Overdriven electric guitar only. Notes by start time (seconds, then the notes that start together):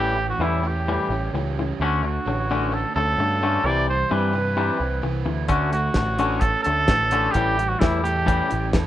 Already playing: A2 A3 C#4
0.17 E3
0.41 C#4
0.63 G4
0.87 G3
1.11 C#4
1.35 G4
1.58 C#4
1.80 D3
2.03 D3
2.25 C#4
2.49 F#4
2.72 A3
2.94 C#4
3.17 F#4
3.39 C#4
3.62 C3
3.87 G3
4.09 E4
4.33 B4
4.56 C4
4.80 E4
5.02 B4
5.26 E4
5.48 D3
5.74 A3
5.97 F#4
6.19 A4
6.41 C#4
6.66 F#4
6.89 A4
7.12 F#4
7.35 A2
7.58 G3
7.82 E4
8.06 A4
8.28 C#4
8.51 E4
8.74 A4